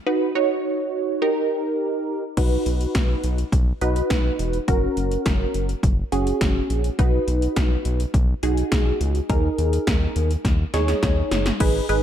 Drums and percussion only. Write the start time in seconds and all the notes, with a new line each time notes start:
2.37 kick, closed hi-hat, crash
2.66 closed hi-hat
2.81 closed hi-hat
2.95 kick, snare, closed hi-hat
3.24 closed hi-hat
3.38 closed hi-hat
3.52 kick, closed hi-hat
3.81 closed hi-hat
3.96 closed hi-hat
4.10 kick, snare, closed hi-hat
4.39 closed hi-hat
4.53 closed hi-hat
4.68 kick, closed hi-hat
4.97 closed hi-hat
5.11 closed hi-hat
5.26 kick, snare, closed hi-hat
5.54 closed hi-hat
5.69 closed hi-hat
5.83 kick, closed hi-hat
6.12 closed hi-hat
6.27 closed hi-hat
6.41 kick, snare, closed hi-hat
6.70 closed hi-hat
6.84 closed hi-hat
6.99 kick, closed hi-hat
7.28 closed hi-hat
7.42 closed hi-hat
7.56 kick, snare, closed hi-hat
7.85 closed hi-hat
8.00 closed hi-hat
8.14 kick, closed hi-hat
8.43 closed hi-hat
8.57 closed hi-hat
8.72 kick, snare, closed hi-hat
9.01 closed hi-hat
9.15 closed hi-hat
9.29 kick, closed hi-hat
9.58 closed hi-hat
9.73 closed hi-hat
9.87 kick, snare, closed hi-hat
10.16 closed hi-hat
10.31 closed hi-hat
10.45 kick, snare, closed hi-hat
10.74 snare, closed hi-hat
10.88 snare, closed hi-hat
11.03 kick, snare, closed hi-hat
11.31 snare, closed hi-hat
11.46 snare, closed hi-hat
11.60 kick, closed hi-hat, crash
11.89 closed hi-hat